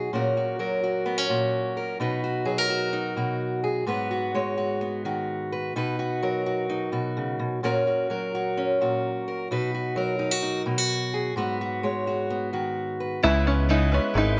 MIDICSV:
0, 0, Header, 1, 6, 480
1, 0, Start_track
1, 0, Key_signature, 5, "major"
1, 0, Tempo, 467290
1, 137, Time_signature, 4, 2, 24, 8
1, 14791, End_track
2, 0, Start_track
2, 0, Title_t, "Steel-string acoustic guitar"
2, 0, Program_c, 0, 25
2, 0, Note_on_c, 0, 54, 51
2, 0, Note_on_c, 0, 63, 40
2, 0, Note_on_c, 0, 66, 42
2, 0, Note_on_c, 0, 68, 42
2, 107, Note_off_c, 0, 63, 0
2, 132, Note_on_c, 0, 46, 52
2, 137, Note_on_c, 0, 61, 39
2, 138, Note_off_c, 0, 68, 0
2, 146, Note_off_c, 0, 66, 0
2, 150, Note_on_c, 0, 66, 39
2, 156, Note_on_c, 0, 70, 53
2, 375, Note_off_c, 0, 66, 0
2, 379, Note_on_c, 0, 66, 42
2, 601, Note_off_c, 0, 70, 0
2, 604, Note_off_c, 0, 54, 0
2, 608, Note_on_c, 0, 54, 52
2, 614, Note_on_c, 0, 70, 49
2, 853, Note_off_c, 0, 66, 0
2, 857, Note_on_c, 0, 66, 46
2, 1081, Note_off_c, 0, 61, 0
2, 1085, Note_on_c, 0, 59, 46
2, 1209, Note_off_c, 0, 59, 0
2, 1209, Note_on_c, 0, 61, 39
2, 1314, Note_off_c, 0, 46, 0
2, 1327, Note_on_c, 0, 46, 51
2, 1331, Note_off_c, 0, 66, 0
2, 1335, Note_on_c, 0, 66, 47
2, 1804, Note_off_c, 0, 70, 0
2, 1816, Note_on_c, 0, 70, 45
2, 2026, Note_off_c, 0, 46, 0
2, 2030, Note_off_c, 0, 70, 0
2, 2051, Note_on_c, 0, 47, 53
2, 2056, Note_off_c, 0, 61, 0
2, 2060, Note_on_c, 0, 63, 41
2, 2062, Note_off_c, 0, 66, 0
2, 2066, Note_on_c, 0, 66, 46
2, 2072, Note_on_c, 0, 71, 50
2, 2294, Note_off_c, 0, 66, 0
2, 2298, Note_on_c, 0, 66, 44
2, 2516, Note_off_c, 0, 54, 0
2, 2517, Note_off_c, 0, 71, 0
2, 2521, Note_on_c, 0, 54, 51
2, 2521, Note_on_c, 0, 68, 53
2, 2651, Note_off_c, 0, 68, 0
2, 2651, Note_on_c, 0, 70, 38
2, 2766, Note_off_c, 0, 66, 0
2, 2770, Note_on_c, 0, 66, 43
2, 3002, Note_off_c, 0, 63, 0
2, 3006, Note_on_c, 0, 63, 43
2, 3239, Note_off_c, 0, 47, 0
2, 3251, Note_on_c, 0, 47, 46
2, 3256, Note_off_c, 0, 66, 0
2, 3260, Note_on_c, 0, 66, 41
2, 3731, Note_off_c, 0, 70, 0
2, 3735, Note_on_c, 0, 68, 47
2, 3950, Note_off_c, 0, 47, 0
2, 3969, Note_on_c, 0, 44, 55
2, 3972, Note_off_c, 0, 63, 0
2, 3976, Note_on_c, 0, 59, 46
2, 3980, Note_off_c, 0, 66, 0
2, 3980, Note_off_c, 0, 68, 0
2, 3985, Note_on_c, 0, 66, 43
2, 3991, Note_on_c, 0, 71, 46
2, 4214, Note_off_c, 0, 66, 0
2, 4218, Note_on_c, 0, 66, 44
2, 4459, Note_off_c, 0, 54, 0
2, 4463, Note_on_c, 0, 56, 47
2, 4466, Note_off_c, 0, 71, 0
2, 4470, Note_on_c, 0, 73, 47
2, 4695, Note_off_c, 0, 66, 0
2, 4699, Note_on_c, 0, 66, 43
2, 4937, Note_off_c, 0, 59, 0
2, 4941, Note_on_c, 0, 59, 42
2, 5186, Note_on_c, 0, 51, 51
2, 5187, Note_off_c, 0, 66, 0
2, 5191, Note_on_c, 0, 66, 44
2, 5669, Note_off_c, 0, 73, 0
2, 5675, Note_on_c, 0, 71, 43
2, 5877, Note_off_c, 0, 56, 0
2, 5879, Note_off_c, 0, 51, 0
2, 5882, Note_off_c, 0, 71, 0
2, 5900, Note_off_c, 0, 44, 0
2, 5905, Note_off_c, 0, 59, 0
2, 5914, Note_on_c, 0, 47, 50
2, 5918, Note_on_c, 0, 63, 48
2, 5921, Note_off_c, 0, 66, 0
2, 5925, Note_on_c, 0, 66, 40
2, 5935, Note_on_c, 0, 71, 48
2, 6148, Note_off_c, 0, 66, 0
2, 6153, Note_on_c, 0, 66, 45
2, 6394, Note_on_c, 0, 54, 52
2, 6396, Note_off_c, 0, 71, 0
2, 6400, Note_on_c, 0, 70, 49
2, 6634, Note_off_c, 0, 66, 0
2, 6638, Note_on_c, 0, 66, 46
2, 6864, Note_off_c, 0, 63, 0
2, 6877, Note_on_c, 0, 63, 41
2, 7097, Note_off_c, 0, 47, 0
2, 7109, Note_on_c, 0, 47, 44
2, 7111, Note_off_c, 0, 66, 0
2, 7115, Note_on_c, 0, 66, 45
2, 7362, Note_on_c, 0, 49, 46
2, 7583, Note_off_c, 0, 47, 0
2, 7595, Note_on_c, 0, 47, 51
2, 7596, Note_off_c, 0, 49, 0
2, 7805, Note_off_c, 0, 63, 0
2, 7806, Note_off_c, 0, 70, 0
2, 7832, Note_off_c, 0, 47, 0
2, 7838, Note_on_c, 0, 46, 53
2, 7845, Note_on_c, 0, 61, 46
2, 7847, Note_off_c, 0, 66, 0
2, 7851, Note_on_c, 0, 66, 45
2, 7857, Note_on_c, 0, 70, 56
2, 8080, Note_off_c, 0, 66, 0
2, 8084, Note_on_c, 0, 66, 40
2, 8315, Note_off_c, 0, 54, 0
2, 8315, Note_off_c, 0, 70, 0
2, 8319, Note_on_c, 0, 54, 49
2, 8327, Note_on_c, 0, 70, 50
2, 8570, Note_off_c, 0, 66, 0
2, 8574, Note_on_c, 0, 66, 54
2, 8802, Note_off_c, 0, 61, 0
2, 8807, Note_on_c, 0, 61, 43
2, 9035, Note_off_c, 0, 46, 0
2, 9048, Note_on_c, 0, 46, 47
2, 9051, Note_off_c, 0, 66, 0
2, 9055, Note_on_c, 0, 66, 47
2, 9519, Note_off_c, 0, 70, 0
2, 9530, Note_on_c, 0, 70, 48
2, 9730, Note_off_c, 0, 61, 0
2, 9731, Note_off_c, 0, 46, 0
2, 9731, Note_off_c, 0, 70, 0
2, 9766, Note_on_c, 0, 47, 53
2, 9770, Note_off_c, 0, 66, 0
2, 9774, Note_on_c, 0, 63, 50
2, 9775, Note_on_c, 0, 66, 46
2, 9786, Note_on_c, 0, 71, 53
2, 10005, Note_off_c, 0, 66, 0
2, 10009, Note_on_c, 0, 66, 44
2, 10226, Note_off_c, 0, 54, 0
2, 10230, Note_on_c, 0, 54, 52
2, 10239, Note_off_c, 0, 71, 0
2, 10243, Note_on_c, 0, 70, 46
2, 10463, Note_off_c, 0, 66, 0
2, 10467, Note_off_c, 0, 63, 0
2, 10467, Note_on_c, 0, 63, 51
2, 10592, Note_off_c, 0, 63, 0
2, 10592, Note_on_c, 0, 66, 45
2, 10707, Note_on_c, 0, 63, 48
2, 10934, Note_off_c, 0, 63, 0
2, 10939, Note_off_c, 0, 47, 0
2, 10943, Note_off_c, 0, 66, 0
2, 10947, Note_on_c, 0, 63, 48
2, 10951, Note_on_c, 0, 47, 54
2, 11072, Note_off_c, 0, 63, 0
2, 11072, Note_on_c, 0, 66, 39
2, 11436, Note_off_c, 0, 70, 0
2, 11440, Note_on_c, 0, 68, 45
2, 11642, Note_off_c, 0, 47, 0
2, 11666, Note_on_c, 0, 44, 52
2, 11671, Note_off_c, 0, 66, 0
2, 11675, Note_off_c, 0, 68, 0
2, 11679, Note_on_c, 0, 59, 50
2, 11685, Note_on_c, 0, 66, 48
2, 11691, Note_on_c, 0, 71, 51
2, 11913, Note_off_c, 0, 66, 0
2, 11925, Note_on_c, 0, 66, 46
2, 12149, Note_off_c, 0, 54, 0
2, 12154, Note_on_c, 0, 56, 51
2, 12156, Note_off_c, 0, 71, 0
2, 12160, Note_on_c, 0, 73, 44
2, 12388, Note_off_c, 0, 66, 0
2, 12400, Note_on_c, 0, 66, 46
2, 12626, Note_off_c, 0, 59, 0
2, 12638, Note_on_c, 0, 59, 44
2, 12861, Note_off_c, 0, 66, 0
2, 12869, Note_on_c, 0, 51, 46
2, 12874, Note_on_c, 0, 66, 42
2, 13352, Note_off_c, 0, 73, 0
2, 13357, Note_on_c, 0, 71, 39
2, 13557, Note_off_c, 0, 51, 0
2, 13559, Note_off_c, 0, 56, 0
2, 13560, Note_off_c, 0, 66, 0
2, 13562, Note_off_c, 0, 71, 0
2, 13583, Note_off_c, 0, 44, 0
2, 14791, Note_off_c, 0, 59, 0
2, 14791, End_track
3, 0, Start_track
3, 0, Title_t, "Five-string banjo"
3, 0, Program_c, 1, 105
3, 13595, Note_on_c, 1, 64, 92
3, 13824, Note_off_c, 1, 64, 0
3, 13836, Note_on_c, 1, 61, 70
3, 14064, Note_off_c, 1, 61, 0
3, 14074, Note_on_c, 1, 63, 74
3, 14303, Note_off_c, 1, 63, 0
3, 14322, Note_on_c, 1, 61, 58
3, 14546, Note_off_c, 1, 61, 0
3, 14561, Note_on_c, 1, 63, 81
3, 14784, Note_off_c, 1, 63, 0
3, 14791, End_track
4, 0, Start_track
4, 0, Title_t, "Steel-string acoustic guitar"
4, 0, Program_c, 2, 25
4, 13585, Note_on_c, 2, 49, 72
4, 13589, Note_on_c, 2, 56, 68
4, 13590, Note_on_c, 2, 59, 81
4, 13597, Note_on_c, 2, 64, 76
4, 13601, Note_on_c, 2, 71, 84
4, 13810, Note_off_c, 2, 71, 0
4, 13823, Note_on_c, 2, 71, 45
4, 13824, Note_off_c, 2, 49, 0
4, 13824, Note_off_c, 2, 64, 0
4, 13826, Note_off_c, 2, 56, 0
4, 13827, Note_off_c, 2, 59, 0
4, 13837, Note_on_c, 2, 64, 46
4, 13840, Note_on_c, 2, 59, 38
4, 14054, Note_off_c, 2, 59, 0
4, 14059, Note_off_c, 2, 64, 0
4, 14060, Note_on_c, 2, 49, 84
4, 14062, Note_off_c, 2, 71, 0
4, 14062, Note_on_c, 2, 56, 79
4, 14067, Note_on_c, 2, 59, 77
4, 14071, Note_on_c, 2, 64, 89
4, 14074, Note_on_c, 2, 71, 85
4, 14284, Note_off_c, 2, 71, 0
4, 14289, Note_off_c, 2, 64, 0
4, 14296, Note_on_c, 2, 71, 54
4, 14300, Note_off_c, 2, 49, 0
4, 14301, Note_off_c, 2, 56, 0
4, 14302, Note_on_c, 2, 64, 49
4, 14304, Note_off_c, 2, 59, 0
4, 14314, Note_on_c, 2, 59, 49
4, 14522, Note_off_c, 2, 59, 0
4, 14522, Note_on_c, 2, 56, 57
4, 14523, Note_off_c, 2, 64, 0
4, 14533, Note_off_c, 2, 71, 0
4, 14534, Note_on_c, 2, 59, 55
4, 14535, Note_on_c, 2, 64, 60
4, 14545, Note_on_c, 2, 71, 69
4, 14760, Note_off_c, 2, 71, 0
4, 14770, Note_off_c, 2, 56, 0
4, 14773, Note_off_c, 2, 64, 0
4, 14776, Note_off_c, 2, 59, 0
4, 14791, End_track
5, 0, Start_track
5, 0, Title_t, "Upright piano"
5, 0, Program_c, 3, 0
5, 13595, Note_on_c, 3, 71, 93
5, 13597, Note_on_c, 3, 37, 61
5, 13597, Note_on_c, 3, 56, 91
5, 13597, Note_on_c, 3, 61, 83
5, 13605, Note_on_c, 3, 76, 97
5, 13606, Note_on_c, 3, 49, 70
5, 13766, Control_c, 3, 64, 127
5, 13813, Note_off_c, 3, 71, 0
5, 13814, Note_off_c, 3, 56, 0
5, 13814, Note_off_c, 3, 61, 0
5, 13818, Note_off_c, 3, 76, 0
5, 13829, Note_on_c, 3, 56, 73
5, 13831, Note_on_c, 3, 61, 72
5, 13833, Note_on_c, 3, 73, 80
5, 13834, Note_on_c, 3, 71, 65
5, 14050, Note_off_c, 3, 56, 0
5, 14050, Note_off_c, 3, 61, 0
5, 14051, Note_off_c, 3, 73, 0
5, 14052, Note_off_c, 3, 71, 0
5, 14071, Note_on_c, 3, 56, 71
5, 14074, Note_on_c, 3, 61, 68
5, 14074, Note_on_c, 3, 76, 75
5, 14076, Note_on_c, 3, 71, 72
5, 14279, Note_off_c, 3, 76, 0
5, 14283, Note_off_c, 3, 56, 0
5, 14284, Note_off_c, 3, 61, 0
5, 14287, Note_off_c, 3, 71, 0
5, 14294, Note_on_c, 3, 76, 91
5, 14298, Note_on_c, 3, 56, 85
5, 14299, Note_on_c, 3, 61, 77
5, 14302, Note_on_c, 3, 71, 68
5, 14516, Note_off_c, 3, 76, 0
5, 14517, Note_off_c, 3, 61, 0
5, 14521, Note_off_c, 3, 56, 0
5, 14521, Note_off_c, 3, 71, 0
5, 14532, Note_on_c, 3, 76, 80
5, 14533, Note_on_c, 3, 61, 68
5, 14537, Note_on_c, 3, 56, 72
5, 14537, Note_on_c, 3, 71, 61
5, 14747, Note_off_c, 3, 61, 0
5, 14754, Note_off_c, 3, 76, 0
5, 14756, Note_off_c, 3, 71, 0
5, 14757, Note_off_c, 3, 56, 0
5, 14791, Note_off_c, 3, 37, 0
5, 14791, Note_off_c, 3, 49, 0
5, 14791, End_track
6, 0, Start_track
6, 0, Title_t, "Analog synth bass"
6, 0, Program_c, 4, 38
6, 13604, Note_on_c, 4, 37, 89
6, 14383, Note_off_c, 4, 37, 0
6, 14537, Note_on_c, 4, 32, 95
6, 14791, Note_off_c, 4, 32, 0
6, 14791, End_track
0, 0, End_of_file